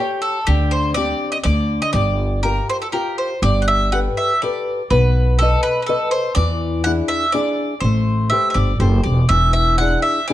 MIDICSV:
0, 0, Header, 1, 4, 480
1, 0, Start_track
1, 0, Key_signature, -2, "minor"
1, 0, Tempo, 490196
1, 464, Time_signature, 3, 2, 24, 8
1, 3363, Key_signature, 1, "major"
1, 10117, End_track
2, 0, Start_track
2, 0, Title_t, "Mandolin"
2, 0, Program_c, 0, 25
2, 0, Note_on_c, 0, 67, 69
2, 201, Note_off_c, 0, 67, 0
2, 212, Note_on_c, 0, 69, 76
2, 457, Note_on_c, 0, 67, 90
2, 464, Note_off_c, 0, 69, 0
2, 687, Note_off_c, 0, 67, 0
2, 696, Note_on_c, 0, 72, 91
2, 920, Note_off_c, 0, 72, 0
2, 924, Note_on_c, 0, 74, 106
2, 1272, Note_off_c, 0, 74, 0
2, 1290, Note_on_c, 0, 75, 83
2, 1339, Note_off_c, 0, 75, 0
2, 1406, Note_on_c, 0, 74, 92
2, 1752, Note_off_c, 0, 74, 0
2, 1781, Note_on_c, 0, 75, 89
2, 1884, Note_off_c, 0, 75, 0
2, 1888, Note_on_c, 0, 74, 87
2, 2345, Note_off_c, 0, 74, 0
2, 2379, Note_on_c, 0, 70, 86
2, 2636, Note_off_c, 0, 70, 0
2, 2640, Note_on_c, 0, 72, 81
2, 2704, Note_off_c, 0, 72, 0
2, 2758, Note_on_c, 0, 69, 67
2, 2807, Note_off_c, 0, 69, 0
2, 2862, Note_on_c, 0, 67, 55
2, 2867, Note_on_c, 0, 70, 60
2, 3112, Note_off_c, 0, 70, 0
2, 3115, Note_on_c, 0, 72, 70
2, 3210, Note_off_c, 0, 67, 0
2, 3342, Note_off_c, 0, 72, 0
2, 3356, Note_on_c, 0, 74, 101
2, 3530, Note_off_c, 0, 74, 0
2, 3544, Note_on_c, 0, 78, 64
2, 3597, Note_off_c, 0, 78, 0
2, 3601, Note_on_c, 0, 76, 96
2, 3836, Note_off_c, 0, 76, 0
2, 3839, Note_on_c, 0, 78, 91
2, 3906, Note_off_c, 0, 78, 0
2, 4086, Note_on_c, 0, 76, 73
2, 4308, Note_off_c, 0, 76, 0
2, 4327, Note_on_c, 0, 74, 69
2, 4771, Note_off_c, 0, 74, 0
2, 4803, Note_on_c, 0, 71, 79
2, 5248, Note_off_c, 0, 71, 0
2, 5275, Note_on_c, 0, 69, 99
2, 5503, Note_off_c, 0, 69, 0
2, 5511, Note_on_c, 0, 71, 88
2, 5691, Note_off_c, 0, 71, 0
2, 5703, Note_on_c, 0, 71, 48
2, 5739, Note_off_c, 0, 71, 0
2, 5743, Note_on_c, 0, 69, 76
2, 5974, Note_off_c, 0, 69, 0
2, 5985, Note_on_c, 0, 72, 81
2, 6212, Note_off_c, 0, 72, 0
2, 6216, Note_on_c, 0, 74, 98
2, 6668, Note_off_c, 0, 74, 0
2, 6697, Note_on_c, 0, 78, 100
2, 6764, Note_off_c, 0, 78, 0
2, 6936, Note_on_c, 0, 76, 86
2, 7163, Note_off_c, 0, 76, 0
2, 7171, Note_on_c, 0, 74, 81
2, 7624, Note_off_c, 0, 74, 0
2, 7642, Note_on_c, 0, 72, 81
2, 8100, Note_off_c, 0, 72, 0
2, 8124, Note_on_c, 0, 76, 85
2, 8312, Note_off_c, 0, 76, 0
2, 8324, Note_on_c, 0, 76, 67
2, 8366, Note_on_c, 0, 74, 75
2, 8387, Note_off_c, 0, 76, 0
2, 8612, Note_off_c, 0, 74, 0
2, 8616, Note_on_c, 0, 72, 66
2, 8843, Note_off_c, 0, 72, 0
2, 8847, Note_on_c, 0, 74, 63
2, 9079, Note_off_c, 0, 74, 0
2, 9095, Note_on_c, 0, 76, 97
2, 9321, Note_off_c, 0, 76, 0
2, 9333, Note_on_c, 0, 76, 82
2, 9562, Note_off_c, 0, 76, 0
2, 9577, Note_on_c, 0, 78, 93
2, 9808, Note_off_c, 0, 78, 0
2, 9815, Note_on_c, 0, 76, 79
2, 10043, Note_off_c, 0, 76, 0
2, 10062, Note_on_c, 0, 74, 81
2, 10117, Note_off_c, 0, 74, 0
2, 10117, End_track
3, 0, Start_track
3, 0, Title_t, "Nylon-string guitar"
3, 0, Program_c, 1, 24
3, 0, Note_on_c, 1, 67, 44
3, 0, Note_on_c, 1, 69, 37
3, 0, Note_on_c, 1, 73, 42
3, 369, Note_off_c, 1, 67, 0
3, 372, Note_off_c, 1, 69, 0
3, 374, Note_off_c, 1, 73, 0
3, 468, Note_on_c, 1, 50, 64
3, 933, Note_off_c, 1, 50, 0
3, 943, Note_on_c, 1, 60, 42
3, 950, Note_on_c, 1, 62, 36
3, 954, Note_on_c, 1, 67, 47
3, 1330, Note_off_c, 1, 60, 0
3, 1331, Note_off_c, 1, 62, 0
3, 1336, Note_off_c, 1, 67, 0
3, 1429, Note_on_c, 1, 50, 60
3, 1894, Note_off_c, 1, 50, 0
3, 1910, Note_on_c, 1, 55, 64
3, 2376, Note_off_c, 1, 55, 0
3, 2386, Note_on_c, 1, 65, 35
3, 2392, Note_on_c, 1, 67, 41
3, 2399, Note_on_c, 1, 70, 39
3, 2776, Note_off_c, 1, 65, 0
3, 2780, Note_off_c, 1, 67, 0
3, 2784, Note_off_c, 1, 70, 0
3, 2869, Note_on_c, 1, 65, 40
3, 2881, Note_on_c, 1, 67, 41
3, 2884, Note_on_c, 1, 70, 40
3, 3261, Note_off_c, 1, 65, 0
3, 3269, Note_off_c, 1, 67, 0
3, 3269, Note_off_c, 1, 70, 0
3, 3370, Note_on_c, 1, 55, 60
3, 3836, Note_off_c, 1, 55, 0
3, 3846, Note_on_c, 1, 67, 41
3, 3852, Note_on_c, 1, 69, 41
3, 3856, Note_on_c, 1, 71, 44
3, 4230, Note_off_c, 1, 67, 0
3, 4234, Note_off_c, 1, 69, 0
3, 4236, Note_off_c, 1, 71, 0
3, 4335, Note_on_c, 1, 67, 44
3, 4336, Note_on_c, 1, 69, 45
3, 4342, Note_on_c, 1, 71, 53
3, 4714, Note_off_c, 1, 69, 0
3, 4715, Note_off_c, 1, 67, 0
3, 4716, Note_off_c, 1, 71, 0
3, 4814, Note_on_c, 1, 59, 55
3, 5272, Note_off_c, 1, 59, 0
3, 5300, Note_on_c, 1, 69, 48
3, 5304, Note_on_c, 1, 71, 48
3, 5310, Note_on_c, 1, 75, 52
3, 5675, Note_off_c, 1, 69, 0
3, 5676, Note_off_c, 1, 71, 0
3, 5677, Note_off_c, 1, 75, 0
3, 5765, Note_on_c, 1, 69, 43
3, 5770, Note_on_c, 1, 71, 44
3, 5772, Note_on_c, 1, 75, 59
3, 6144, Note_off_c, 1, 69, 0
3, 6145, Note_off_c, 1, 71, 0
3, 6148, Note_off_c, 1, 75, 0
3, 6237, Note_on_c, 1, 52, 65
3, 6699, Note_off_c, 1, 52, 0
3, 6716, Note_on_c, 1, 62, 48
3, 6721, Note_on_c, 1, 64, 43
3, 6724, Note_on_c, 1, 68, 51
3, 7096, Note_off_c, 1, 62, 0
3, 7098, Note_off_c, 1, 64, 0
3, 7101, Note_off_c, 1, 68, 0
3, 7186, Note_on_c, 1, 62, 49
3, 7189, Note_on_c, 1, 64, 47
3, 7193, Note_on_c, 1, 68, 52
3, 7570, Note_off_c, 1, 62, 0
3, 7571, Note_off_c, 1, 64, 0
3, 7574, Note_off_c, 1, 68, 0
3, 7681, Note_on_c, 1, 57, 71
3, 8139, Note_off_c, 1, 57, 0
3, 8144, Note_on_c, 1, 67, 43
3, 8150, Note_on_c, 1, 69, 47
3, 8157, Note_on_c, 1, 72, 56
3, 8529, Note_off_c, 1, 67, 0
3, 8533, Note_off_c, 1, 69, 0
3, 8537, Note_off_c, 1, 72, 0
3, 8625, Note_on_c, 1, 67, 50
3, 8631, Note_on_c, 1, 69, 47
3, 8633, Note_on_c, 1, 72, 48
3, 9011, Note_off_c, 1, 67, 0
3, 9015, Note_off_c, 1, 69, 0
3, 9015, Note_off_c, 1, 72, 0
3, 9116, Note_on_c, 1, 52, 60
3, 9579, Note_off_c, 1, 52, 0
3, 9596, Note_on_c, 1, 62, 37
3, 9598, Note_on_c, 1, 64, 37
3, 9608, Note_on_c, 1, 68, 41
3, 9976, Note_off_c, 1, 62, 0
3, 9976, Note_off_c, 1, 64, 0
3, 9984, Note_off_c, 1, 68, 0
3, 10083, Note_on_c, 1, 62, 48
3, 10087, Note_on_c, 1, 64, 49
3, 10117, Note_off_c, 1, 62, 0
3, 10117, Note_off_c, 1, 64, 0
3, 10117, End_track
4, 0, Start_track
4, 0, Title_t, "Upright bass"
4, 0, Program_c, 2, 32
4, 466, Note_on_c, 2, 38, 76
4, 1092, Note_off_c, 2, 38, 0
4, 1420, Note_on_c, 2, 38, 92
4, 1734, Note_off_c, 2, 38, 0
4, 1899, Note_on_c, 2, 31, 83
4, 2531, Note_off_c, 2, 31, 0
4, 3350, Note_on_c, 2, 31, 80
4, 3981, Note_off_c, 2, 31, 0
4, 4806, Note_on_c, 2, 35, 88
4, 5425, Note_off_c, 2, 35, 0
4, 6231, Note_on_c, 2, 40, 81
4, 6852, Note_off_c, 2, 40, 0
4, 7653, Note_on_c, 2, 33, 70
4, 8127, Note_off_c, 2, 33, 0
4, 8374, Note_on_c, 2, 31, 79
4, 8594, Note_off_c, 2, 31, 0
4, 8614, Note_on_c, 2, 30, 80
4, 8839, Note_off_c, 2, 30, 0
4, 8867, Note_on_c, 2, 28, 73
4, 9083, Note_off_c, 2, 28, 0
4, 9105, Note_on_c, 2, 28, 80
4, 9730, Note_off_c, 2, 28, 0
4, 10117, End_track
0, 0, End_of_file